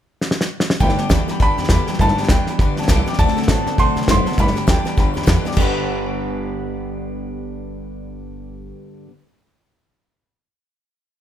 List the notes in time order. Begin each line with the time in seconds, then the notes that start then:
0.21 snare
0.31 snare
0.41 snare
0.60 snare
0.70 snare
0.80 G1 G2 D3 G3 B3 D4 G4 D5 G5 B5, kick, snare
0.89 snare
0.98 G3 B3 D4 G4 D5 G5 D6, muted upright bass stroke, snare
1.09 D2 G2 D3 E3 G3 B3 D4 G4 D5 G5 B5, kick, snare, hi-hat pedal
1.28 G3 B3 D4 G4 D5 G5 B5, snare
1.40 E2 G2 D3 G3 B3 D4 G4 D5 G5 A5 B5, kick, snare
1.57 E2 G3 B3 D4 G4 D5 G5 B5, snare
1.64 snare
1.69 E2 G2 D3 E3 G3 B3 D4 G4 D5 G5 B5 D6, kick, snare, hi-hat pedal
1.87 G3 B3 D4 G4 D5 G5 B5, muted upright bass stroke, snare
1.94 snare
1.98 G1 G2 D3 G3 B3 D4 G4 D5 G5 A5 B5, kick, snare
2.08 snare
2.18 G3 B3 D4 G4 D5 G5 B5, muted upright bass stroke, snare
2.23 snare
2.29 D2 G2 D3 E3 G3 B3 D4 G4 D5 G5 B5, kick, snare, hi-hat pedal
2.47 G3 B3 D4 G4 D5 G5 B5, muted upright bass stroke, snare
2.59 E2 G2 D3 G3 B3 D4 D5 G5 B5, kick, snare
2.63 G4
2.76 E2 G3 B3 D4 G4 D5 G5 A5, snare
2.82 snare
2.88 C2 G2 D3 E3 G3 B3 D4 G4 D5 G5 A5, kick, snare, hi-hat pedal
3.06 G3 B3 D4 G4 D5 G5 D6, muted upright bass stroke, snare
3.13 snare
3.19 D2 D3 F#3 A3 C4 D4 A4 D5 F#5 A5, kick, snare
3.28 snare
3.36 C4 D4 A4 D5 F#5 A5, muted upright bass stroke, snare
3.43 snare
3.48 A2 D3 F#3 B3 C4 D4 A4 D5 F#5 A5, kick, snare, hi-hat pedal
3.66 C4 D4 A4 D5 F#5 A5, muted upright bass stroke, snare
3.78 B2 D3 F#3 A3 C4 D4 A4 D5 F#5 A5 C6, kick, snare
3.96 C3 C4 D4 A4 D5 F#5 B5, snare
4.02 snare
4.08 F#1 D3 F#3 B3 C4 D4 A4 F#5 C6, kick, snare, hi-hat pedal
4.26 C4 D4 A4 D5 F#5 A5, muted upright bass stroke, snare
4.32 snare
4.38 G1 G2 D3 G3 B3 D4 G4 D5 G5 B5, kick, snare
4.47 snare
4.55 G3 B3 D4 G4 D5 G5 B5, muted upright bass stroke, snare
4.67 D2 G2 D3 E3 G3 B3 D4 G4 D5 G5 B5, kick, snare, hi-hat pedal
4.85 G3 B3 D4 G4 D5 G5 B5, muted upright bass stroke, snare
4.97 E2 G2 D3 G3 B3 D4 G4 D5 G5 B5, kick, snare
5.14 E2 G3 B3 D4 G4 D5 G5, snare
5.18 B5
5.22 G2, snare
5.27 E2 D3 E3 G3 B3 D4 G4 G5 B5, kick, snare, hi-hat pedal
5.45 G3 B3 D4 G4 D5 G5 D6, muted upright bass stroke, snare
5.52 G2 D5, snare
5.56 G1 D3 G3 B3 B4 G5, kick, crash
5.62 D4 G4 B5